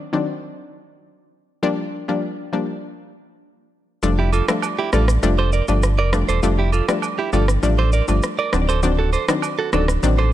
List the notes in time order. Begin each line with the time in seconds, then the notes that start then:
0.13 D#3 F#3 C4 D4
1.63 F3 G3 A#3 D4
2.08 F3 G3 A#3 D4
2.53 F3 G3 A#3 D4
4.03 F1 F3 G3 A3 D4, shaker
4.19 E4 G4
4.33 F4 A4, high agogo, shaker
4.48 F3 G3 A3 D4, cross-stick, shaker
4.62 high agogo, low woodblock, shaker
4.79 E4 G4
4.93 A1 F3 G3 A3 D4 F4 A4, cross-stick, high agogo, shaker
5.08 cross-stick, shaker
5.23 F1 F3 G3 A3 D4, shaker
5.38 A4 C5, high agogo
5.53 A#4 D5, shaker
5.68 G1 F3 G3 A3 D4, high agogo, shaker
5.83 cross-stick, shaker
5.98 F1 A#4 D5, high agogo
6.13 F3 G3 A3 D4, cross-stick, shaker
6.29 E1 A4 C5, high agogo, shaker
6.43 F1 F3 G3 A3 D4, shaker
6.59 E4 G4
6.72 F4 A4, high agogo, shaker
6.88 F3 G3 A3 D4, cross-stick, shaker
7.02 high agogo, low woodblock, shaker
7.19 E4 G4
7.33 G1 F3 G3 A3 D4 F4 A4, high agogo, shaker
7.48 cross-stick, shaker
7.63 A1 F3 G3 A3 D4, shaker
7.78 A4 C5, high agogo
7.92 A#4 D5, shaker
8.08 G1 F3 G3 A3 D4, high agogo, shaker
8.23 cross-stick, shaker
8.39 A#4 D5, high agogo
8.53 D1 D#3 F#3 C4 D4, cross-stick, shaker
8.69 A4 C5, high agogo, shaker
8.83 D#3 F#3 C4 D4, shaker
8.99 F#4 A4
9.13 A4 C5, high agogo, shaker
9.28 D#3 F#3 C4 D4, cross-stick, shaker
9.42 high agogo, low woodblock, shaker
9.59 F#4 A4
9.73 D1 D#3 F#3 C4 D4 F#4 A4, cross-stick, high agogo, shaker
9.88 cross-stick, shaker
10.03 A1 D#3 F#3 C4 D4, shaker
10.18 A4 C5, high agogo